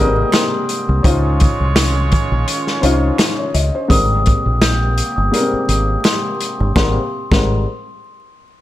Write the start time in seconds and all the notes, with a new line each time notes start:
Already playing: G#1 G#2 C3 G3 A#3 C4 G4 A#4 D#5 D#6
0.00 A#4
0.04 C4
0.32 C6, finger snap, snare, closed hi-hat
0.69 closed hi-hat
0.89 C2
1.03 C#2 D#3 G#3 C#4 D#4 F4 C5 C#5, kick, closed hi-hat
1.40 kick, closed hi-hat
1.60 C2
1.76 finger snap, snare, closed hi-hat
2.12 kick, closed hi-hat
2.32 A#1
2.48 closed hi-hat
2.67 snare
2.81 C2 C#4 D#4 F4 C5, closed hi-hat
3.18 finger snap, snare, closed hi-hat
3.39 C#5
3.54 C#2 D#5, closed hi-hat
3.75 C5
3.88 G#1 G#2 C3 G3 A#3 C4 G4 A#4 D#6, kick, closed hi-hat
4.26 kick, closed hi-hat
4.46 A#1
4.62 G6, finger snap, snare, closed hi-hat
4.98 closed hi-hat
5.16 G1 D#6
5.32 G#2 G3 A#3 A#4, closed hi-hat
5.40 C4
5.53 muted fingered electric bass stroke
5.69 G#1 D#6, closed hi-hat
6.04 C6, finger snap, snare, closed hi-hat
6.41 closed hi-hat
6.60 G1
6.76 G#1 G#2 C3 G3 A#3 C4 G4 A#4 C6, finger snap, kick, snare
7.32 G#1 G#2 G3 C4 A#4 C6, finger snap, kick, snare